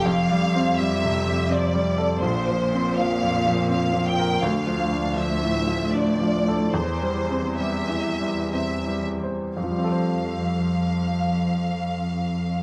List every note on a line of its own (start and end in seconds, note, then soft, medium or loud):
0.04 2.19 F2 soft
0.04 0.79 F5 medium
0.31 0.70 G3 soft
0.55 0.94 C4 soft
0.78 1.18 G3 soft
0.78 1.50 E5 medium
1.05 1.42 C3 soft
1.28 1.65 G3 soft
1.50 1.89 C4 soft
1.50 2.23 D5 soft
1.74 2.13 G3 soft
1.98 2.23 A4 soft
2.22 4.37 A#1 soft
2.22 4.42 A#2 soft
2.22 2.97 C5 medium
2.48 2.89 F3 soft
2.74 3.14 C4 soft
2.98 3.37 F3 soft
2.98 3.70 F5 medium
3.23 3.61 F2 soft
3.46 3.84 F3 soft
3.69 4.07 C4 soft
3.69 4.06 F5 soft
3.93 4.32 F3 soft
4.07 4.43 G5 medium
4.19 4.43 A#4 soft
4.43 6.70 D2 soft
4.43 6.71 D2 soft
4.43 5.17 F5 soft
4.66 5.06 F3 soft
4.93 5.32 D4 soft
5.16 5.56 F3 soft
5.16 5.93 E5 medium
5.43 5.83 A2 soft
5.67 6.09 F3 soft
5.93 6.36 D4 soft
5.93 6.74 D5 medium
6.21 6.64 F3 soft
6.48 6.75 A4 soft
6.74 9.52 E2 soft
6.74 9.25 E2 soft
6.74 7.59 C5 soft
7.02 7.47 G3 soft
7.30 7.77 C4 soft
7.59 8.07 G3 soft
7.59 8.50 E5 soft
7.89 8.39 E3 soft
8.20 8.73 G3 soft
8.53 9.08 C4 soft
8.53 9.03 E5 soft
8.87 9.43 G3 soft
9.23 9.57 C5 soft
9.57 12.63 F2 soft
9.57 12.63 F5 soft
9.64 12.63 F3 soft
9.71 12.63 G3 soft
9.78 12.63 C4 soft
9.84 12.63 A4 soft
9.92 12.63 C5 soft